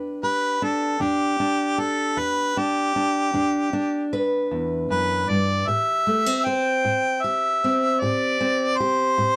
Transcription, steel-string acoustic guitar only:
Already playing: E2 D4 G4 B4
0.23 G4
0.62 D4
1.00 E2 D4
1.40 D4
1.78 G4
2.17 E2
2.57 D4
2.96 D4
3.34 E2 D4
3.73 D4
4.13 B4
4.51 E2
4.90 F#2
5.30 G2
5.68 A2 G4
6.07 A3
6.26 C4
6.46 C5
6.85 A2
7.24 G4
7.64 C4
8.02 A2 G4
8.41 C4
8.80 G4
9.18 A2

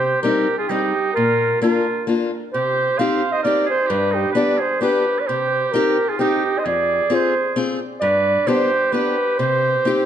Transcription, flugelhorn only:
Already playing: C5
0.22 A#4
0.58 G#4
0.68 G4
1.13 A#4
1.61 A#4
2.53 C5
2.98 F5
3.32 D#5
3.44 D5
3.69 C5
3.90 B4
4.14 G4
4.35 D5
4.61 C5
4.82 B4
5.21 D5
5.27 C5
5.72 A#4
6.09 G#4
6.18 G4
6.59 D#5
6.66 D5
7.14 C5
8.01 D5
8.47 C5
8.92 B4
9.38 C5

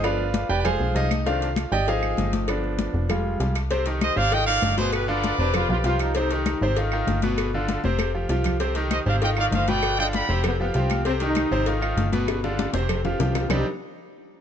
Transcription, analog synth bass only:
Already playing: G1
0.49 F1
0.80 B1
0.95 C2
1.72 G#1
2.17 G1
2.94 F1
3.40 C2
4.16 G#1
4.62 G1
5.38 F1
5.69 B1
5.84 C2
6.61 G#1
7.07 G1
7.84 F1
8.29 C2
9.06 G#1
9.52 G1
10.29 F1
10.75 C2
11.51 G#1
11.97 G1
12.73 F1
13.20 C2
13.49 C2

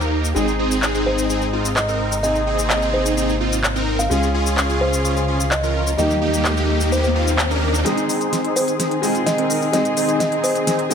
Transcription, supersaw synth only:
0.01 A#3 D#4 A#4
0.36 C4 D#4 G#4
0.59 C4 D#4 G#4
0.94 C4 D#4 G#4
1.30 C4 D#4 G#4
1.53 C4 D#4 F4
1.88 C4 D#4 A#4
2.23 C4 D#4 G#4
2.47 C4 D#4 G#4
2.82 C4 D#4 G#4
3.17 C4 D#4 G#4
3.41 C4 D#4 F4
3.76 C4 D#4 A#4
4.11 C#4 F4 G#4
4.34 C#4 F4 G#4
4.69 C#4 F4 G#4
5.05 C#4 F4 G#4
5.28 C#4 F4 G#4
5.63 C#4 F4 A#4
5.98 A#3 D#4 G4
6.22 A#3 D#4 G4
6.57 A#3 D#4 G4
6.92 A#3 D#4 G4
7.15 A#3 D#4 F4
7.51 A#3 D#4 A#4
7.86 C4 D#4 G#4
8.09 C4 D#4 G#4
8.44 C4 D#4 G#4
8.79 C4 D#4 G#4
9.03 C4 D#4 F4
9.38 C4 D#4 A#4
9.73 C4 D#4 G#4
9.97 C4 D#4 G#4
10.32 C4 D#4 G#4
10.67 C4 D#4 G#4
10.90 C4 D#4 F4

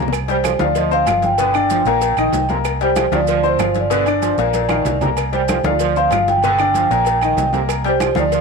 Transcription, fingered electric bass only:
Already playing: C2
0.60 D2
1.07 G1
1.85 A#1
2.17 A#1
2.32 C2
3.12 D2
3.59 G1
4.38 A#1
4.85 C2
5.63 D2
6.11 G1
6.91 A#1
7.37 C2
8.16 D2

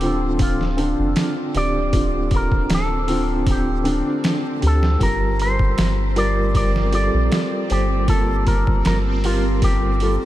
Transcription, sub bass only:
Already playing: D1
0.99 F1
1.55 D1
2.70 D1
4.63 D2
5.01 G1
5.79 G1
7.14 A#1
7.71 G1
8.86 G1

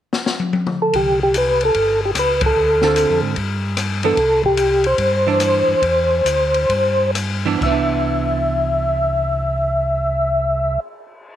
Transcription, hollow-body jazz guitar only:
2.83 D3 C4 F4 A4
4.04 E3 B3 D4
5.27 E3 D4
7.46 E3 B3 D4
7.59 E3
7.66 B3
7.71 D4

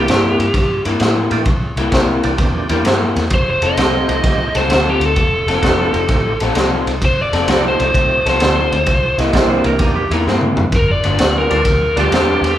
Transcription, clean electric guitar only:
0.07 C3 G3 A#3 E4
0.86 C3 G3 A#3 E4
1.01 C3 G3 A#3 E4
1.78 C3 G3 A#3 E4
1.92 C3 G3 A#3 E4
2.69 C3 G3 A#3 E4
2.85 C3 G3 A#3 E4
3.63 F3 C4 D#4 A4
3.78 F3 C4 D#4 A4
4.55 F3 C4 D#4 A4
4.71 F3 C4 D#4 A4
5.48 F3 C4 D#4 A4
5.64 F3 C4 D#4 A4
6.41 F3 C4 D#4 A4
6.56 F3 C4 D#4 A4
7.33 F3 C4 D#4 A4
7.47 F3 C4 D#4 A4
8.26 F3 C4 D#4 A4
8.41 F3 C4 D#4 A4
9.18 C3 G3 A#3 E4
9.34 C3 G3 A#3 E4
10.11 C3 G3 A#3 E4
10.26 C3 G3 A#3 E4
11.05 G2 F3 B3 D4
11.20 G2 F3 B3 D4
11.97 G2 F3 B3 D4
12.11 G2 F3 B3 D4

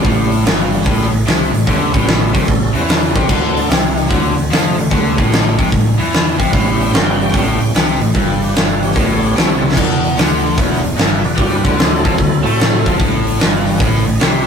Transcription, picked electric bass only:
0.05 A1
0.46 G1
0.86 A1
1.13 A1
1.27 C2
1.54 A1
1.67 D2
1.94 A1
2.35 C2
2.48 A1
2.75 E2
3.15 C2
3.29 D2
3.70 C2
4.10 D2
4.37 D2
4.51 F2
4.78 D2
4.91 D2
5.18 A1
5.59 C2
5.72 A1
5.99 E2
6.39 C2
6.53 A1
6.92 G1
7.34 A1
7.60 A1
7.74 C2
8.02 A1
8.15 G1
8.96 A1
9.36 C2
9.77 E1
10.17 D2
10.58 E1
10.84 E1
10.97 G1
11.24 E1
11.38 G2
11.65 D2
12.05 F2
12.18 D2
12.46 A2
12.86 F2
13.00 A1
13.40 G1
13.80 A1
14.07 A1
14.20 C2

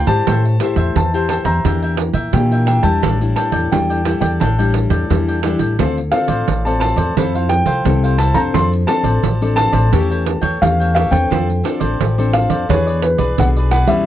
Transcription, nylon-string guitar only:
Already playing: D3
0.07 E4 G4 C5
0.27 A3
0.60 E4 G4 C5
0.95 E3
1.14 E4 G4 C5
1.65 E3 A#3 D4 G4
2.34 E3 A#3 D4 G4
2.83 G3 D4 E4
3.03 A2
3.21 G3 D4 E4
3.72 E3 G3 D4 E4
4.05 G3 D4 E4
4.41 A2
4.59 G3 D4 E4
5.10 E3 G3 D4 E4
5.43 G3 D4 E4
5.79 D3 C4 F4 A4
6.12 C4 F4 A4
6.48 A2
6.66 C4 F4 A4
7.17 F3 C4 E4 A4
7.85 C3 C4 E4 A4
8.34 C4 D4 A4
8.54 F3
8.88 C4 D4 A4
9.23 F3
9.41 C4 D4 A4
9.92 E3 A3 C#4 G4
10.62 E3 A3 C#4 G4
11.11 C4 D4 A4
11.31 F3
11.64 C4 D4 A4
11.99 F3
12.18 C4 D4 A4
12.69 E3 B3 D4 G#4
13.38 B2 B3 D4 G#4
13.87 G3 C#4 E4

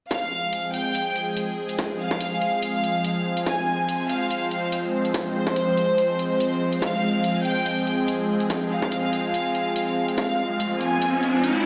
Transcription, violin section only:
0.11 F5
0.74 G5
2.00 F5
3.47 G#5
4.09 F5
5.35 C5
6.82 F5
7.45 G5
8.71 F5
10.18 F5
10.81 G#5

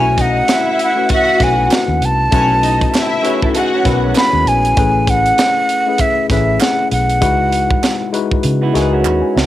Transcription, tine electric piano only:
Already playing: A3 C#4 E4 F#4 B4
0.96 A3 C#4 E4 F#4 B4
1.39 A3 C#4 D#4 F#4 B4
1.47 E4
2.32 A3 C#4 D#4 F#4 B4
2.39 E4
3.22 A3 C#4 D#4 F#4 B4
3.30 E4
3.84 B3 C#4 E4 F#4 A#4
3.93 B4
4.77 A3 C#4 E4 G#4 B4
5.86 A3 C#4 E4 G#4 B4
6.30 A3 C#4 E4 G#4 B4
7.21 G#3 D#4 E4 F#4 B4
8.13 G#3 D#4 E4 F#4 B4
8.73 G#3 D#4 E4 F#4 A#4
8.81 B4
9.05 B5
9.22 G#5
9.35 E5

